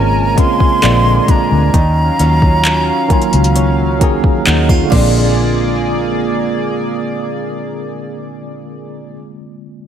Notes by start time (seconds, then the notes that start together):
Already playing: G#1 A#2 C#3 G#3 A#3 C4 C#4 F4 A#4 G#5 A#5
0.35 C#3 G#3 A#3 C4 C6, kick, closed hi-hat
0.40 F4
0.60 kick
0.81 A#1 A#2 D3 G#3 A#3 C4 D4, clap, closed hi-hat
0.85 F4
1.28 D4 A#5, kick, closed hi-hat
1.52 D2
1.74 D#2 D#3 F#3 C#4 F5, kick, closed hi-hat
2.19 D#2 F#3 C#4 F4, closed hi-hat
2.42 kick
2.65 clap, closed hi-hat
3.08 D#3 F#3 A#3 C#4, muted fingered electric bass stroke, kick, closed hi-hat
3.12 F4
3.22 closed hi-hat
3.33 C#2, closed hi-hat
3.44 closed hi-hat
3.56 C#4, closed hi-hat
3.99 D#3 F#3 A#3 C#4 C#5 A#5, kick, closed hi-hat
4.03 G#4
4.24 kick
4.46 D#2 D#4 F#5, clap, closed hi-hat
4.69 F4 F5, kick
4.83 D3
4.88 A#2 G#3
4.92 A#1 G#3 A#3 D4 G#4 D5, kick, crash
4.97 C4 F4
5.01 F4